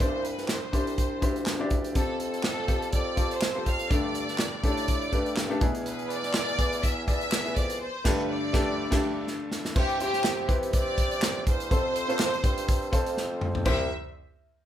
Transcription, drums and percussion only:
0.00 kick, closed hi-hat
0.25 closed hi-hat
0.38 snare, closed hi-hat
0.48 snare, clap
0.73 kick, closed hi-hat
0.87 closed hi-hat
0.98 kick, closed hi-hat
1.22 kick, closed hi-hat
1.36 closed hi-hat
1.46 snare, clap
1.70 kick, closed hi-hat
1.84 closed hi-hat
1.95 kick, closed hi-hat
2.20 closed hi-hat
2.34 closed hi-hat
2.43 snare, clap
2.68 kick, closed hi-hat
2.82 closed hi-hat
2.93 kick, closed hi-hat
3.17 kick, closed hi-hat
3.31 closed hi-hat
3.42 snare, clap
3.66 kick, closed hi-hat
3.79 closed hi-hat
3.91 kick, closed hi-hat
4.15 closed hi-hat
4.29 snare, closed hi-hat
4.38 snare, clap
4.64 kick, closed hi-hat
4.77 closed hi-hat
4.88 kick, closed hi-hat
5.02 closed hi-hat
5.13 kick, closed hi-hat
5.26 closed hi-hat
5.36 snare, clap
5.51 closed hi-hat
5.61 kick, closed hi-hat
5.75 closed hi-hat
5.86 closed hi-hat
5.99 closed hi-hat
6.10 closed hi-hat
6.24 snare, closed hi-hat
6.33 snare, clap
6.49 closed hi-hat
6.59 kick, closed hi-hat
6.73 closed hi-hat
6.83 kick, closed hi-hat
7.08 kick, closed hi-hat
7.21 closed hi-hat
7.32 snare, clap
7.46 closed hi-hat
7.56 kick, closed hi-hat
7.70 closed hi-hat
8.05 kick, snare, crash
8.54 kick, snare
8.92 kick, snare, crash
9.27 snare
9.52 snare
9.65 snare
9.76 kick, crash
9.89 closed hi-hat
10.00 closed hi-hat
10.13 snare, closed hi-hat
10.24 snare, clap
10.49 kick, closed hi-hat
10.63 closed hi-hat
10.73 kick, closed hi-hat
10.87 closed hi-hat
10.98 kick, closed hi-hat
11.11 closed hi-hat
11.22 snare, clap
11.47 kick, closed hi-hat
11.60 closed hi-hat
11.71 kick, closed hi-hat
11.96 closed hi-hat
12.10 closed hi-hat
12.19 snare, clap
12.34 closed hi-hat
12.44 kick, closed hi-hat
12.58 closed hi-hat
12.68 kick, closed hi-hat
12.82 closed hi-hat
12.93 kick, closed hi-hat
13.06 closed hi-hat
13.17 snare
13.41 mid tom
13.55 floor tom
13.65 kick, floor tom, crash

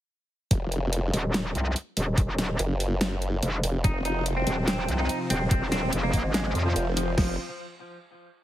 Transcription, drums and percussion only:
0.51 kick, closed hi-hat
0.72 closed hi-hat
0.93 closed hi-hat
1.14 open hi-hat
1.34 snare, closed hi-hat
1.55 closed hi-hat
1.76 closed hi-hat
1.97 open hi-hat
2.18 kick, closed hi-hat
2.38 snare, closed hi-hat
2.59 closed hi-hat
2.80 open hi-hat
3.01 snare, closed hi-hat
3.22 closed hi-hat
3.43 closed hi-hat
3.63 open hi-hat
3.84 kick, closed hi-hat
4.05 closed hi-hat
4.26 closed hi-hat
4.47 open hi-hat
4.68 snare, closed hi-hat
4.88 closed hi-hat
5.09 closed hi-hat
5.30 open hi-hat
5.51 kick, closed hi-hat
5.72 snare, closed hi-hat
5.93 closed hi-hat
6.13 kick, open hi-hat
6.34 snare, closed hi-hat
6.55 closed hi-hat
6.76 closed hi-hat
6.97 open hi-hat
7.18 kick, snare, crash

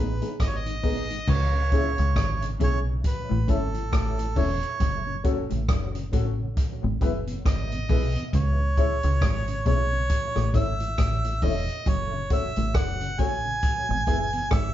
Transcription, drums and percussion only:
0.22 closed hi-hat
0.40 kick, cross-stick, closed hi-hat
0.66 closed hi-hat
0.83 kick, open hi-hat
1.10 closed hi-hat
1.28 kick, crash
1.72 kick, closed hi-hat
1.98 closed hi-hat
2.16 kick, cross-stick, closed hi-hat
2.42 closed hi-hat
2.60 kick, closed hi-hat
3.04 kick, closed hi-hat
3.48 kick, closed hi-hat
3.74 closed hi-hat
3.93 kick, cross-stick, closed hi-hat
4.19 closed hi-hat
4.36 kick, open hi-hat
4.63 closed hi-hat
4.80 kick, closed hi-hat
5.24 kick, closed hi-hat
5.50 closed hi-hat
5.69 kick, cross-stick, closed hi-hat
5.95 closed hi-hat
6.13 kick, closed hi-hat
6.57 kick, closed hi-hat
7.01 kick, closed hi-hat
7.27 closed hi-hat
7.46 kick, cross-stick, closed hi-hat
7.72 closed hi-hat
7.89 kick, open hi-hat
8.16 closed hi-hat
8.33 kick, closed hi-hat
8.77 kick, closed hi-hat
9.03 closed hi-hat
9.22 kick, cross-stick, closed hi-hat
9.48 closed hi-hat
9.66 kick, closed hi-hat
10.10 kick, closed hi-hat
10.36 cross-stick
10.54 kick, closed hi-hat
10.80 closed hi-hat
10.98 kick, cross-stick, closed hi-hat
11.25 closed hi-hat
11.42 kick, open hi-hat
11.69 closed hi-hat
11.86 kick, closed hi-hat
12.30 kick, closed hi-hat
12.56 closed hi-hat
12.75 kick, cross-stick, closed hi-hat
13.01 closed hi-hat
13.19 kick, closed hi-hat
13.63 kick, closed hi-hat
14.07 kick, closed hi-hat
14.33 closed hi-hat
14.51 kick, cross-stick, closed hi-hat

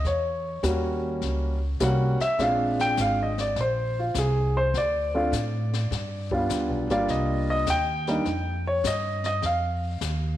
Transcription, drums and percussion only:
0.05 brush sweep, kick, snare
0.63 kick, snare, hi-hat pedal
1.22 brush sweep, kick, snare
1.80 kick, snare, hi-hat pedal
2.20 snare
2.39 brush sweep, kick, snare
2.79 snare
2.97 kick, snare, hi-hat pedal
3.38 snare
3.56 brush sweep, kick, snare
4.15 kick, snare, hi-hat pedal
4.74 brush sweep, kick, snare
5.32 kick, snare, hi-hat pedal
5.73 snare
5.91 brush sweep, kick, snare
6.31 kick
6.49 kick, snare, hi-hat pedal
6.90 snare
7.08 brush sweep, kick, snare
7.66 kick, snare, hi-hat pedal
8.07 snare
8.25 brush sweep, kick, snare
8.84 kick, snare, hi-hat pedal
9.24 snare
9.42 brush sweep, kick, snare
10.01 kick, snare, hi-hat pedal

